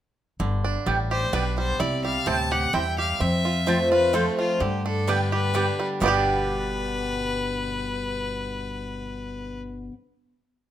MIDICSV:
0, 0, Header, 1, 6, 480
1, 0, Start_track
1, 0, Tempo, 467654
1, 410, Time_signature, 3, 2, 24, 8
1, 10990, End_track
2, 0, Start_track
2, 0, Title_t, "Fiddle"
2, 0, Program_c, 0, 110
2, 1143, Note_on_c, 0, 72, 92
2, 1365, Note_on_c, 0, 71, 82
2, 1380, Note_off_c, 0, 72, 0
2, 1615, Note_off_c, 0, 71, 0
2, 1621, Note_on_c, 0, 72, 92
2, 1843, Note_on_c, 0, 74, 80
2, 1859, Note_off_c, 0, 72, 0
2, 2087, Note_off_c, 0, 74, 0
2, 2094, Note_on_c, 0, 77, 88
2, 2330, Note_on_c, 0, 81, 100
2, 2345, Note_off_c, 0, 77, 0
2, 2578, Note_on_c, 0, 78, 97
2, 2593, Note_off_c, 0, 81, 0
2, 2807, Note_on_c, 0, 79, 96
2, 2823, Note_off_c, 0, 78, 0
2, 3059, Note_off_c, 0, 79, 0
2, 3065, Note_on_c, 0, 77, 85
2, 3287, Note_on_c, 0, 76, 85
2, 3303, Note_off_c, 0, 77, 0
2, 4015, Note_off_c, 0, 76, 0
2, 4021, Note_on_c, 0, 71, 90
2, 4247, Note_on_c, 0, 69, 85
2, 4262, Note_off_c, 0, 71, 0
2, 4497, Note_off_c, 0, 69, 0
2, 4503, Note_on_c, 0, 65, 81
2, 4731, Note_on_c, 0, 67, 76
2, 4747, Note_off_c, 0, 65, 0
2, 4984, Note_off_c, 0, 67, 0
2, 4990, Note_on_c, 0, 69, 84
2, 5219, Note_on_c, 0, 71, 75
2, 5234, Note_off_c, 0, 69, 0
2, 5464, Note_off_c, 0, 71, 0
2, 5470, Note_on_c, 0, 71, 87
2, 6022, Note_off_c, 0, 71, 0
2, 6175, Note_on_c, 0, 71, 89
2, 9837, Note_off_c, 0, 71, 0
2, 10990, End_track
3, 0, Start_track
3, 0, Title_t, "Mandolin"
3, 0, Program_c, 1, 25
3, 883, Note_on_c, 1, 59, 89
3, 888, Note_on_c, 1, 67, 90
3, 893, Note_on_c, 1, 74, 83
3, 896, Note_on_c, 1, 79, 95
3, 984, Note_off_c, 1, 59, 0
3, 987, Note_off_c, 1, 67, 0
3, 989, Note_off_c, 1, 74, 0
3, 991, Note_off_c, 1, 79, 0
3, 1363, Note_on_c, 1, 59, 79
3, 1368, Note_on_c, 1, 67, 86
3, 1373, Note_on_c, 1, 74, 88
3, 1378, Note_on_c, 1, 79, 88
3, 1464, Note_off_c, 1, 59, 0
3, 1467, Note_off_c, 1, 67, 0
3, 1469, Note_off_c, 1, 74, 0
3, 1472, Note_off_c, 1, 79, 0
3, 2325, Note_on_c, 1, 60, 92
3, 2330, Note_on_c, 1, 64, 91
3, 2334, Note_on_c, 1, 72, 96
3, 2339, Note_on_c, 1, 79, 97
3, 2425, Note_off_c, 1, 60, 0
3, 2427, Note_off_c, 1, 64, 0
3, 2430, Note_off_c, 1, 72, 0
3, 2432, Note_off_c, 1, 79, 0
3, 2805, Note_on_c, 1, 60, 89
3, 2810, Note_on_c, 1, 64, 86
3, 2814, Note_on_c, 1, 72, 89
3, 2820, Note_on_c, 1, 79, 91
3, 2906, Note_off_c, 1, 60, 0
3, 2908, Note_off_c, 1, 64, 0
3, 2910, Note_off_c, 1, 72, 0
3, 2913, Note_off_c, 1, 79, 0
3, 3766, Note_on_c, 1, 60, 84
3, 3772, Note_on_c, 1, 65, 91
3, 3779, Note_on_c, 1, 72, 100
3, 3784, Note_on_c, 1, 81, 102
3, 3867, Note_off_c, 1, 60, 0
3, 3870, Note_off_c, 1, 65, 0
3, 3873, Note_off_c, 1, 72, 0
3, 3875, Note_off_c, 1, 81, 0
3, 4248, Note_on_c, 1, 60, 91
3, 4253, Note_on_c, 1, 65, 84
3, 4259, Note_on_c, 1, 72, 87
3, 4261, Note_on_c, 1, 81, 87
3, 4348, Note_off_c, 1, 60, 0
3, 4351, Note_off_c, 1, 65, 0
3, 4354, Note_off_c, 1, 72, 0
3, 4355, Note_off_c, 1, 81, 0
3, 5214, Note_on_c, 1, 59, 87
3, 5219, Note_on_c, 1, 67, 83
3, 5225, Note_on_c, 1, 74, 100
3, 5228, Note_on_c, 1, 79, 97
3, 5312, Note_off_c, 1, 59, 0
3, 5315, Note_off_c, 1, 67, 0
3, 5318, Note_off_c, 1, 74, 0
3, 5319, Note_off_c, 1, 79, 0
3, 5695, Note_on_c, 1, 59, 83
3, 5699, Note_on_c, 1, 67, 83
3, 5704, Note_on_c, 1, 74, 92
3, 5708, Note_on_c, 1, 79, 86
3, 5793, Note_off_c, 1, 59, 0
3, 5795, Note_off_c, 1, 67, 0
3, 5798, Note_off_c, 1, 74, 0
3, 5800, Note_off_c, 1, 79, 0
3, 6166, Note_on_c, 1, 59, 84
3, 6181, Note_on_c, 1, 67, 76
3, 6194, Note_on_c, 1, 74, 85
3, 6206, Note_on_c, 1, 79, 94
3, 10172, Note_off_c, 1, 59, 0
3, 10188, Note_off_c, 1, 67, 0
3, 10200, Note_off_c, 1, 74, 0
3, 10213, Note_off_c, 1, 79, 0
3, 10990, End_track
4, 0, Start_track
4, 0, Title_t, "Five-string banjo"
4, 0, Program_c, 2, 105
4, 409, Note_on_c, 2, 50, 59
4, 662, Note_on_c, 2, 62, 61
4, 889, Note_on_c, 2, 55, 53
4, 1092, Note_off_c, 2, 50, 0
4, 1141, Note_on_c, 2, 67, 54
4, 1323, Note_off_c, 2, 62, 0
4, 1368, Note_on_c, 2, 62, 61
4, 1571, Note_off_c, 2, 55, 0
4, 1620, Note_on_c, 2, 55, 54
4, 1802, Note_off_c, 2, 67, 0
4, 1841, Note_off_c, 2, 62, 0
4, 1845, Note_on_c, 2, 64, 61
4, 1847, Note_off_c, 2, 55, 0
4, 2100, Note_on_c, 2, 55, 59
4, 2328, Note_on_c, 2, 60, 58
4, 2530, Note_off_c, 2, 64, 0
4, 2583, Note_on_c, 2, 67, 55
4, 2762, Note_off_c, 2, 55, 0
4, 2811, Note_on_c, 2, 64, 59
4, 3012, Note_off_c, 2, 60, 0
4, 3049, Note_off_c, 2, 67, 0
4, 3062, Note_on_c, 2, 67, 53
4, 3288, Note_on_c, 2, 60, 62
4, 3289, Note_off_c, 2, 67, 0
4, 3291, Note_off_c, 2, 64, 0
4, 3542, Note_on_c, 2, 65, 61
4, 3768, Note_on_c, 2, 57, 57
4, 3973, Note_off_c, 2, 60, 0
4, 4008, Note_off_c, 2, 65, 0
4, 4021, Note_on_c, 2, 65, 55
4, 4233, Note_off_c, 2, 57, 0
4, 4245, Note_on_c, 2, 57, 68
4, 4490, Note_off_c, 2, 65, 0
4, 4502, Note_on_c, 2, 65, 56
4, 4728, Note_on_c, 2, 50, 59
4, 4729, Note_off_c, 2, 57, 0
4, 4730, Note_off_c, 2, 65, 0
4, 4985, Note_on_c, 2, 62, 62
4, 5212, Note_on_c, 2, 55, 56
4, 5415, Note_off_c, 2, 50, 0
4, 5463, Note_on_c, 2, 67, 59
4, 5648, Note_off_c, 2, 62, 0
4, 5693, Note_on_c, 2, 62, 61
4, 5898, Note_off_c, 2, 55, 0
4, 5949, Note_on_c, 2, 55, 54
4, 6128, Note_off_c, 2, 67, 0
4, 6164, Note_off_c, 2, 55, 0
4, 6175, Note_off_c, 2, 62, 0
4, 6176, Note_on_c, 2, 55, 76
4, 6196, Note_on_c, 2, 59, 76
4, 6217, Note_on_c, 2, 62, 83
4, 6238, Note_on_c, 2, 67, 76
4, 10141, Note_off_c, 2, 55, 0
4, 10161, Note_off_c, 2, 59, 0
4, 10183, Note_off_c, 2, 62, 0
4, 10203, Note_off_c, 2, 67, 0
4, 10990, End_track
5, 0, Start_track
5, 0, Title_t, "Steel-string acoustic guitar"
5, 0, Program_c, 3, 25
5, 409, Note_on_c, 3, 43, 79
5, 887, Note_on_c, 3, 45, 84
5, 1323, Note_off_c, 3, 43, 0
5, 1345, Note_off_c, 3, 45, 0
5, 1364, Note_on_c, 3, 47, 87
5, 1824, Note_off_c, 3, 47, 0
5, 1848, Note_on_c, 3, 48, 84
5, 2319, Note_on_c, 3, 45, 88
5, 2764, Note_off_c, 3, 48, 0
5, 2782, Note_off_c, 3, 45, 0
5, 2802, Note_on_c, 3, 43, 93
5, 3264, Note_off_c, 3, 43, 0
5, 3291, Note_on_c, 3, 41, 88
5, 3761, Note_on_c, 3, 53, 86
5, 3765, Note_on_c, 3, 57, 93
5, 3773, Note_on_c, 3, 60, 86
5, 3779, Note_on_c, 3, 65, 94
5, 4004, Note_off_c, 3, 65, 0
5, 4010, Note_off_c, 3, 53, 0
5, 4012, Note_off_c, 3, 57, 0
5, 4016, Note_off_c, 3, 60, 0
5, 4017, Note_on_c, 3, 65, 57
5, 4033, Note_on_c, 3, 60, 50
5, 4207, Note_off_c, 3, 41, 0
5, 4238, Note_off_c, 3, 60, 0
5, 4238, Note_off_c, 3, 65, 0
5, 4240, Note_on_c, 3, 53, 97
5, 4246, Note_on_c, 3, 57, 97
5, 4250, Note_on_c, 3, 60, 90
5, 4256, Note_on_c, 3, 65, 100
5, 4704, Note_off_c, 3, 53, 0
5, 4707, Note_off_c, 3, 57, 0
5, 4709, Note_off_c, 3, 60, 0
5, 4712, Note_off_c, 3, 65, 0
5, 4725, Note_on_c, 3, 43, 83
5, 5208, Note_on_c, 3, 50, 85
5, 5212, Note_on_c, 3, 55, 86
5, 5217, Note_on_c, 3, 59, 95
5, 5221, Note_on_c, 3, 67, 97
5, 5645, Note_off_c, 3, 43, 0
5, 5669, Note_off_c, 3, 50, 0
5, 5671, Note_off_c, 3, 55, 0
5, 5673, Note_off_c, 3, 59, 0
5, 5676, Note_off_c, 3, 67, 0
5, 5683, Note_on_c, 3, 50, 87
5, 5690, Note_on_c, 3, 55, 85
5, 5697, Note_on_c, 3, 59, 88
5, 5698, Note_on_c, 3, 67, 95
5, 6147, Note_off_c, 3, 50, 0
5, 6151, Note_off_c, 3, 55, 0
5, 6154, Note_off_c, 3, 59, 0
5, 6155, Note_off_c, 3, 67, 0
5, 6162, Note_on_c, 3, 43, 84
5, 6169, Note_on_c, 3, 47, 82
5, 6173, Note_on_c, 3, 50, 83
5, 6176, Note_on_c, 3, 55, 84
5, 6183, Note_on_c, 3, 59, 96
5, 6189, Note_on_c, 3, 67, 84
5, 10168, Note_off_c, 3, 43, 0
5, 10175, Note_off_c, 3, 47, 0
5, 10180, Note_off_c, 3, 50, 0
5, 10182, Note_off_c, 3, 55, 0
5, 10189, Note_off_c, 3, 59, 0
5, 10195, Note_off_c, 3, 67, 0
5, 10990, End_track
6, 0, Start_track
6, 0, Title_t, "Upright bass"
6, 0, Program_c, 4, 32
6, 408, Note_on_c, 4, 31, 84
6, 772, Note_off_c, 4, 31, 0
6, 886, Note_on_c, 4, 33, 88
6, 1295, Note_off_c, 4, 33, 0
6, 1363, Note_on_c, 4, 35, 84
6, 1774, Note_off_c, 4, 35, 0
6, 1847, Note_on_c, 4, 36, 88
6, 2212, Note_off_c, 4, 36, 0
6, 2327, Note_on_c, 4, 38, 86
6, 2736, Note_off_c, 4, 38, 0
6, 2808, Note_on_c, 4, 40, 82
6, 3217, Note_off_c, 4, 40, 0
6, 3288, Note_on_c, 4, 41, 87
6, 4384, Note_off_c, 4, 41, 0
6, 4730, Note_on_c, 4, 43, 89
6, 5826, Note_off_c, 4, 43, 0
6, 6172, Note_on_c, 4, 31, 87
6, 10137, Note_off_c, 4, 31, 0
6, 10990, End_track
0, 0, End_of_file